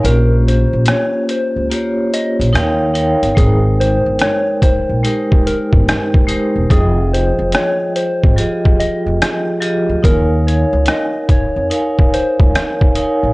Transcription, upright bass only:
X:1
M:4/4
L:1/16
Q:"Swing 16ths" 1/4=72
K:Bbdor
V:1 name="Upright bass" clef=bass
B,,,3 B,,, z3 D,, z3 B,,, E,,3 G,,, | A,,,3 G,,, z3 B,,, z3 G,,, z3 =E,,, | F,,,3 F,,, z3 A,,, z3 F,,, z3 =D,, | E,,3 D,, z3 F,, z3 D,, z3 =A,,, |]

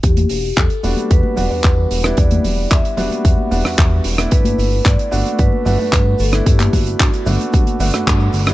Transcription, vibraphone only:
X:1
M:4/4
L:1/8
Q:1/4=112
K:Em
V:1 name="Vibraphone"
G2 z2 B4 | d2 e4- e z | B2 d2 B B2 A | G F6 z |]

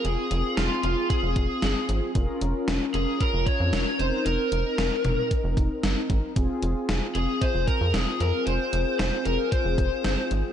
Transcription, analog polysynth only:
X:1
M:4/4
L:1/8
Q:1/4=114
K:Fm
V:1 name="Analog polysynth"
[CFA]8 | [DFB]6- [DFB] [CEB]- | [CEB]8 | [CFA]8- |
[CFA]8 |]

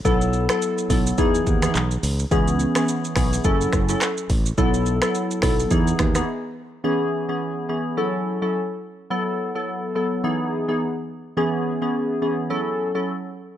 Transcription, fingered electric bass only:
X:1
M:4/4
L:1/16
Q:"Swing 16ths" 1/4=106
K:C#m
V:1 name="Fingered electric bass" clef=bass
B,,,4 z2 B,,,2 E,,2 D,,2 B,,,2 C,,2 | C,,3 z3 B,,,2 F,,,2 F,,,2 z2 A,,,2 | B,,,4 z2 B,,,2 E,,2 D,,2 z4 | z16 |
z16 | z16 |]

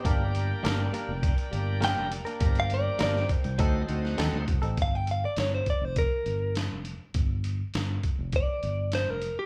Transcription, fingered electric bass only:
X:1
M:4/4
L:1/16
Q:1/4=101
K:Gm
V:1 name="Fingered electric bass" clef=bass
G,,,4 G,,,2 z F,,,2 z G,,,3 F,,,2 z | G,,,4 G,,,2 z C,, D,,2 D,,2 E,, D,, C,, A,,, | G,,,4 G,,,2 z F,,,2 z G,,,3 F,,,2 z | G,,,4 G,,,2 z F,,,2 z G,,,3 F,,,2 z |]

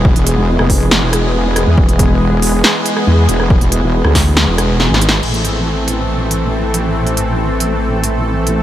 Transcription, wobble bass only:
X:1
M:4/4
L:1/16
Q:1/4=139
K:Am
V:1 name="Wobble bass" clef=bass
E,,, E,,,2 E,,,2 F,,,4 E,,,6 E,, | E,,,8 z4 E,,2 E,,,2- | E,,, E,,,2 E,,,2 D,,4 E,,,4 ^G,,,3 | A,,,16- |
A,,,16 |]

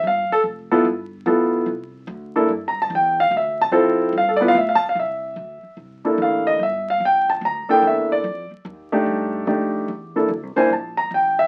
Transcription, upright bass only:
X:1
M:4/4
L:1/8
Q:"Swing" 1/4=146
K:Cmix
V:1 name="Upright bass" clef=bass
G,,, z F,,,2 G,,,2 A,,,2 | C,,2 D,,2 G,,2 E,,2 | D,,2 F,,2 G,,2 A,, z | C,,2 D,, z C,,2 A,,,2 |
G,,,2 B,,,2 D,, z E,,2 | F,, z _E,,2 G,,2 F,,2 | E,,2 (3D,, C,, B,,, B,,,2 A,,,2 |]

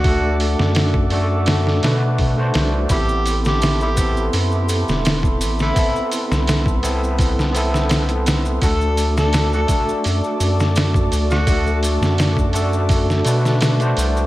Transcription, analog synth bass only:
X:1
M:4/4
L:1/16
Q:1/4=84
K:Dmix
V:1 name="Analog synth bass" clef=bass
D,,3 F,,6- F,, B,,4 C,,2 | A,,,8 F,,3 E,,,3 A,,,2 | z3 C,,12- C,, | D,,6 z2 F,, z F,,4 D,,2- |
D,,3 F,,6- F,, B,,4 C,,2 |]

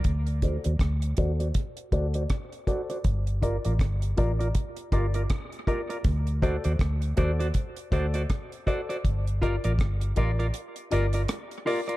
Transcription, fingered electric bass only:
X:1
M:4/4
L:1/16
Q:"Swing 16ths" 1/4=80
K:Gm
V:1 name="Fingered electric bass" clef=bass
D,,3 E,, D,,2 E,,2 z2 D,,2 z4 | G,,,3 A,,, G,,,2 A,,,2 z2 G,,,2 z4 | D,,3 E,, D,,2 E,,2 z2 D,,2 z4 | G,,,3 A,,, G,,,2 A,,,2 z2 G,,,2 z4 |]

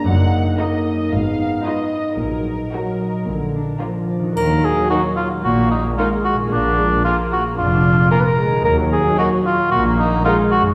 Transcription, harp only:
X:1
M:4/4
L:1/8
Q:1/4=112
K:Ebm
V:1 name="Harp"
[G,,B] E B e A,, E c e | B,, E B e B,, =D B =d | [E,EGB]8 | [B,,FAB]8 |
[E,EGB]8 |]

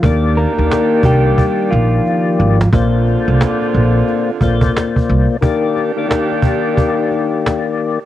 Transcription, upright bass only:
X:1
M:4/4
L:1/16
Q:"Swing 16ths" 1/4=89
K:Eb
V:1 name="Upright bass" clef=bass
E,,3 E,, z2 C,,2 z2 B,,,2 z2 A,,,2 | B,,,3 C,, z2 B,,,2 z2 B,,,2 z2 C,, z | z16 |]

